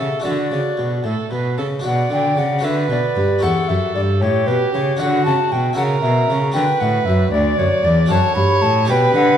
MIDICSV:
0, 0, Header, 1, 5, 480
1, 0, Start_track
1, 0, Key_signature, 2, "minor"
1, 0, Tempo, 531915
1, 221, Time_signature, 6, 3, 24, 8
1, 3099, Tempo, 520382
1, 8579, End_track
2, 0, Start_track
2, 0, Title_t, "Flute"
2, 0, Program_c, 0, 73
2, 0, Note_on_c, 0, 76, 71
2, 208, Note_on_c, 0, 74, 74
2, 221, Note_off_c, 0, 76, 0
2, 941, Note_off_c, 0, 74, 0
2, 1670, Note_on_c, 0, 78, 81
2, 1893, Note_off_c, 0, 78, 0
2, 1920, Note_on_c, 0, 79, 84
2, 2152, Note_on_c, 0, 78, 81
2, 2165, Note_off_c, 0, 79, 0
2, 2385, Note_on_c, 0, 76, 84
2, 2399, Note_off_c, 0, 78, 0
2, 2618, Note_off_c, 0, 76, 0
2, 2624, Note_on_c, 0, 74, 83
2, 3093, Note_on_c, 0, 78, 96
2, 3107, Note_off_c, 0, 74, 0
2, 3330, Note_on_c, 0, 76, 78
2, 3344, Note_off_c, 0, 78, 0
2, 3569, Note_off_c, 0, 76, 0
2, 3574, Note_on_c, 0, 74, 78
2, 3629, Note_off_c, 0, 74, 0
2, 3806, Note_on_c, 0, 73, 82
2, 4055, Note_on_c, 0, 71, 78
2, 4069, Note_off_c, 0, 73, 0
2, 4295, Note_off_c, 0, 71, 0
2, 4300, Note_on_c, 0, 73, 85
2, 4543, Note_on_c, 0, 78, 90
2, 4557, Note_off_c, 0, 73, 0
2, 4772, Note_off_c, 0, 78, 0
2, 4777, Note_on_c, 0, 81, 96
2, 5025, Note_on_c, 0, 79, 80
2, 5039, Note_off_c, 0, 81, 0
2, 5247, Note_off_c, 0, 79, 0
2, 5252, Note_on_c, 0, 78, 88
2, 5308, Note_off_c, 0, 78, 0
2, 5480, Note_on_c, 0, 76, 90
2, 5744, Note_off_c, 0, 76, 0
2, 5959, Note_on_c, 0, 79, 103
2, 6206, Note_on_c, 0, 78, 87
2, 6220, Note_off_c, 0, 79, 0
2, 6439, Note_on_c, 0, 76, 85
2, 6453, Note_off_c, 0, 78, 0
2, 6663, Note_off_c, 0, 76, 0
2, 6669, Note_on_c, 0, 74, 91
2, 6927, Note_on_c, 0, 73, 94
2, 6941, Note_off_c, 0, 74, 0
2, 7169, Note_on_c, 0, 74, 93
2, 7183, Note_off_c, 0, 73, 0
2, 7398, Note_off_c, 0, 74, 0
2, 7403, Note_on_c, 0, 81, 104
2, 7635, Note_off_c, 0, 81, 0
2, 7641, Note_on_c, 0, 83, 101
2, 7882, Note_on_c, 0, 81, 103
2, 7895, Note_off_c, 0, 83, 0
2, 8127, Note_off_c, 0, 81, 0
2, 8132, Note_on_c, 0, 79, 105
2, 8364, Note_off_c, 0, 79, 0
2, 8370, Note_on_c, 0, 78, 105
2, 8579, Note_off_c, 0, 78, 0
2, 8579, End_track
3, 0, Start_track
3, 0, Title_t, "Violin"
3, 0, Program_c, 1, 40
3, 0, Note_on_c, 1, 69, 64
3, 214, Note_off_c, 1, 69, 0
3, 220, Note_on_c, 1, 66, 52
3, 885, Note_off_c, 1, 66, 0
3, 943, Note_on_c, 1, 69, 60
3, 1171, Note_off_c, 1, 69, 0
3, 1193, Note_on_c, 1, 71, 57
3, 1420, Note_off_c, 1, 71, 0
3, 1426, Note_on_c, 1, 69, 50
3, 1498, Note_off_c, 1, 69, 0
3, 1670, Note_on_c, 1, 74, 76
3, 2347, Note_off_c, 1, 74, 0
3, 2378, Note_on_c, 1, 71, 76
3, 3095, Note_on_c, 1, 69, 62
3, 3109, Note_off_c, 1, 71, 0
3, 3817, Note_on_c, 1, 67, 72
3, 3831, Note_off_c, 1, 69, 0
3, 4525, Note_off_c, 1, 67, 0
3, 4530, Note_on_c, 1, 66, 71
3, 5240, Note_off_c, 1, 66, 0
3, 5257, Note_on_c, 1, 70, 77
3, 5962, Note_off_c, 1, 70, 0
3, 5978, Note_on_c, 1, 71, 76
3, 6679, Note_off_c, 1, 71, 0
3, 6693, Note_on_c, 1, 74, 84
3, 7414, Note_on_c, 1, 73, 86
3, 7428, Note_off_c, 1, 74, 0
3, 8137, Note_on_c, 1, 71, 90
3, 8150, Note_off_c, 1, 73, 0
3, 8579, Note_off_c, 1, 71, 0
3, 8579, End_track
4, 0, Start_track
4, 0, Title_t, "Harpsichord"
4, 0, Program_c, 2, 6
4, 0, Note_on_c, 2, 49, 49
4, 0, Note_on_c, 2, 61, 45
4, 0, Note_on_c, 2, 67, 44
4, 0, Note_on_c, 2, 69, 44
4, 178, Note_off_c, 2, 61, 0
4, 178, Note_on_c, 2, 62, 37
4, 185, Note_off_c, 2, 67, 0
4, 192, Note_off_c, 2, 69, 0
4, 194, Note_on_c, 2, 66, 40
4, 198, Note_off_c, 2, 49, 0
4, 207, Note_on_c, 2, 69, 39
4, 225, Note_on_c, 2, 50, 42
4, 442, Note_off_c, 2, 50, 0
4, 466, Note_on_c, 2, 49, 46
4, 683, Note_off_c, 2, 49, 0
4, 699, Note_on_c, 2, 47, 43
4, 920, Note_off_c, 2, 47, 0
4, 938, Note_on_c, 2, 45, 45
4, 1160, Note_off_c, 2, 45, 0
4, 1182, Note_on_c, 2, 47, 44
4, 1404, Note_off_c, 2, 47, 0
4, 1426, Note_on_c, 2, 49, 42
4, 1608, Note_off_c, 2, 62, 0
4, 1619, Note_on_c, 2, 62, 41
4, 1623, Note_off_c, 2, 66, 0
4, 1630, Note_off_c, 2, 69, 0
4, 1633, Note_on_c, 2, 66, 42
4, 1645, Note_off_c, 2, 49, 0
4, 1650, Note_on_c, 2, 71, 42
4, 1662, Note_on_c, 2, 47, 45
4, 1881, Note_off_c, 2, 47, 0
4, 1898, Note_on_c, 2, 50, 51
4, 2117, Note_off_c, 2, 50, 0
4, 2141, Note_on_c, 2, 49, 49
4, 2324, Note_off_c, 2, 62, 0
4, 2335, Note_on_c, 2, 62, 50
4, 2339, Note_off_c, 2, 66, 0
4, 2350, Note_on_c, 2, 66, 48
4, 2351, Note_off_c, 2, 71, 0
4, 2357, Note_off_c, 2, 49, 0
4, 2363, Note_on_c, 2, 69, 47
4, 2377, Note_on_c, 2, 50, 51
4, 2594, Note_off_c, 2, 50, 0
4, 2617, Note_on_c, 2, 47, 56
4, 2834, Note_off_c, 2, 47, 0
4, 2860, Note_on_c, 2, 43, 53
4, 3052, Note_off_c, 2, 62, 0
4, 3056, Note_on_c, 2, 61, 46
4, 3060, Note_off_c, 2, 66, 0
4, 3066, Note_off_c, 2, 69, 0
4, 3070, Note_on_c, 2, 67, 44
4, 3075, Note_off_c, 2, 43, 0
4, 3088, Note_on_c, 2, 73, 46
4, 3096, Note_on_c, 2, 40, 50
4, 3315, Note_off_c, 2, 40, 0
4, 3345, Note_on_c, 2, 42, 52
4, 3560, Note_off_c, 2, 42, 0
4, 3582, Note_on_c, 2, 43, 51
4, 3799, Note_off_c, 2, 43, 0
4, 3829, Note_on_c, 2, 45, 55
4, 4043, Note_off_c, 2, 45, 0
4, 4067, Note_on_c, 2, 47, 53
4, 4282, Note_off_c, 2, 47, 0
4, 4305, Note_on_c, 2, 49, 51
4, 4485, Note_off_c, 2, 61, 0
4, 4492, Note_off_c, 2, 67, 0
4, 4502, Note_off_c, 2, 73, 0
4, 4511, Note_on_c, 2, 62, 48
4, 4521, Note_off_c, 2, 49, 0
4, 4521, Note_on_c, 2, 66, 47
4, 4538, Note_on_c, 2, 71, 46
4, 4550, Note_on_c, 2, 50, 49
4, 4763, Note_off_c, 2, 50, 0
4, 4785, Note_on_c, 2, 49, 53
4, 4999, Note_off_c, 2, 49, 0
4, 5024, Note_on_c, 2, 47, 53
4, 5219, Note_off_c, 2, 66, 0
4, 5219, Note_on_c, 2, 64, 54
4, 5223, Note_off_c, 2, 62, 0
4, 5230, Note_on_c, 2, 66, 51
4, 5237, Note_off_c, 2, 71, 0
4, 5238, Note_off_c, 2, 47, 0
4, 5247, Note_on_c, 2, 70, 53
4, 5260, Note_on_c, 2, 49, 55
4, 5476, Note_off_c, 2, 49, 0
4, 5502, Note_on_c, 2, 47, 57
4, 5717, Note_off_c, 2, 47, 0
4, 5742, Note_on_c, 2, 49, 55
4, 5935, Note_off_c, 2, 64, 0
4, 5941, Note_off_c, 2, 66, 0
4, 5942, Note_on_c, 2, 62, 45
4, 5950, Note_off_c, 2, 70, 0
4, 5951, Note_on_c, 2, 66, 48
4, 5956, Note_off_c, 2, 49, 0
4, 5968, Note_on_c, 2, 71, 49
4, 5982, Note_on_c, 2, 50, 54
4, 6195, Note_off_c, 2, 50, 0
4, 6214, Note_on_c, 2, 45, 57
4, 6430, Note_off_c, 2, 45, 0
4, 6460, Note_on_c, 2, 42, 57
4, 6673, Note_off_c, 2, 42, 0
4, 6704, Note_on_c, 2, 38, 64
4, 6914, Note_off_c, 2, 38, 0
4, 6940, Note_on_c, 2, 42, 66
4, 7152, Note_off_c, 2, 42, 0
4, 7172, Note_on_c, 2, 40, 57
4, 7357, Note_off_c, 2, 62, 0
4, 7362, Note_off_c, 2, 66, 0
4, 7367, Note_on_c, 2, 62, 54
4, 7370, Note_off_c, 2, 71, 0
4, 7380, Note_on_c, 2, 66, 55
4, 7388, Note_off_c, 2, 40, 0
4, 7390, Note_on_c, 2, 69, 52
4, 7409, Note_on_c, 2, 42, 58
4, 7628, Note_off_c, 2, 42, 0
4, 7655, Note_on_c, 2, 43, 62
4, 7872, Note_off_c, 2, 43, 0
4, 7889, Note_on_c, 2, 45, 66
4, 8084, Note_off_c, 2, 62, 0
4, 8095, Note_on_c, 2, 62, 60
4, 8097, Note_off_c, 2, 66, 0
4, 8102, Note_off_c, 2, 69, 0
4, 8106, Note_on_c, 2, 67, 56
4, 8108, Note_off_c, 2, 45, 0
4, 8120, Note_on_c, 2, 74, 57
4, 8137, Note_on_c, 2, 47, 64
4, 8354, Note_off_c, 2, 47, 0
4, 8364, Note_on_c, 2, 50, 67
4, 8579, Note_off_c, 2, 50, 0
4, 8579, Note_off_c, 2, 62, 0
4, 8579, Note_off_c, 2, 67, 0
4, 8579, Note_off_c, 2, 74, 0
4, 8579, End_track
5, 0, Start_track
5, 0, Title_t, "Cello"
5, 0, Program_c, 3, 42
5, 226, Note_on_c, 3, 50, 58
5, 462, Note_off_c, 3, 50, 0
5, 468, Note_on_c, 3, 49, 52
5, 540, Note_off_c, 3, 49, 0
5, 709, Note_on_c, 3, 47, 50
5, 944, Note_off_c, 3, 47, 0
5, 950, Note_on_c, 3, 45, 56
5, 1022, Note_off_c, 3, 45, 0
5, 1188, Note_on_c, 3, 47, 52
5, 1431, Note_on_c, 3, 49, 52
5, 1444, Note_off_c, 3, 47, 0
5, 1669, Note_off_c, 3, 49, 0
5, 1674, Note_on_c, 3, 47, 66
5, 1895, Note_off_c, 3, 47, 0
5, 1916, Note_on_c, 3, 50, 60
5, 2146, Note_off_c, 3, 50, 0
5, 2151, Note_on_c, 3, 49, 61
5, 2377, Note_on_c, 3, 50, 63
5, 2391, Note_off_c, 3, 49, 0
5, 2608, Note_off_c, 3, 50, 0
5, 2614, Note_on_c, 3, 47, 59
5, 2686, Note_off_c, 3, 47, 0
5, 2850, Note_on_c, 3, 43, 60
5, 2923, Note_off_c, 3, 43, 0
5, 3093, Note_on_c, 3, 40, 66
5, 3167, Note_off_c, 3, 40, 0
5, 3340, Note_on_c, 3, 42, 62
5, 3414, Note_off_c, 3, 42, 0
5, 3572, Note_on_c, 3, 43, 60
5, 3823, Note_on_c, 3, 45, 66
5, 3837, Note_off_c, 3, 43, 0
5, 4050, Note_off_c, 3, 45, 0
5, 4056, Note_on_c, 3, 47, 58
5, 4130, Note_off_c, 3, 47, 0
5, 4303, Note_on_c, 3, 49, 60
5, 4535, Note_off_c, 3, 49, 0
5, 4540, Note_on_c, 3, 50, 72
5, 4776, Note_off_c, 3, 50, 0
5, 4782, Note_on_c, 3, 49, 67
5, 4856, Note_off_c, 3, 49, 0
5, 5017, Note_on_c, 3, 47, 62
5, 5248, Note_off_c, 3, 47, 0
5, 5254, Note_on_c, 3, 49, 66
5, 5492, Note_off_c, 3, 49, 0
5, 5497, Note_on_c, 3, 47, 67
5, 5733, Note_off_c, 3, 47, 0
5, 5737, Note_on_c, 3, 49, 71
5, 5970, Note_off_c, 3, 49, 0
5, 5976, Note_on_c, 3, 50, 72
5, 6050, Note_off_c, 3, 50, 0
5, 6211, Note_on_c, 3, 45, 67
5, 6442, Note_off_c, 3, 45, 0
5, 6447, Note_on_c, 3, 42, 72
5, 6680, Note_off_c, 3, 42, 0
5, 6685, Note_on_c, 3, 38, 73
5, 6919, Note_off_c, 3, 38, 0
5, 6925, Note_on_c, 3, 42, 69
5, 6998, Note_off_c, 3, 42, 0
5, 7160, Note_on_c, 3, 40, 71
5, 7393, Note_off_c, 3, 40, 0
5, 7398, Note_on_c, 3, 42, 81
5, 7472, Note_off_c, 3, 42, 0
5, 7638, Note_on_c, 3, 43, 77
5, 7712, Note_off_c, 3, 43, 0
5, 7879, Note_on_c, 3, 45, 72
5, 8129, Note_on_c, 3, 47, 79
5, 8143, Note_off_c, 3, 45, 0
5, 8358, Note_off_c, 3, 47, 0
5, 8364, Note_on_c, 3, 50, 77
5, 8579, Note_off_c, 3, 50, 0
5, 8579, End_track
0, 0, End_of_file